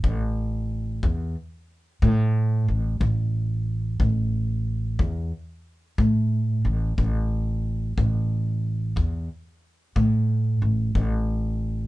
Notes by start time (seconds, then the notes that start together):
0.04 A1, kick
1.03 E2, kick
2.02 A2, kick
2.68 A1
3.00 A1, kick
4.00 A1, kick
4.99 E2, kick
5.98 A2, kick
6.65 A1
6.98 A1, kick
7.98 A1, kick
8.96 E2, kick
9.96 A2, kick
10.62 A1
10.95 A1, kick